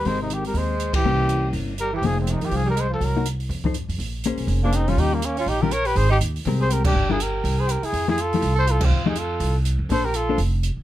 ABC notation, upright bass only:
X:1
M:4/4
L:1/8
Q:"Swing" 1/4=244
K:Fm
V:1 name="Upright bass" clef=bass
A,,,4 E,,4 | C,,4 G,,,4 | F,,,3 _G,,, C,,4 | C,,4 F,,3 F,, |
B,,,3 =B,,, F,,,4 | E,,4 B,,,4 | A,,,2 E,,2 C,,4 | G,,,4 C,,3 z |
F,,4 C,,4 | F,,4 C,,3 F,, | B,,,4 F,,,3 z |]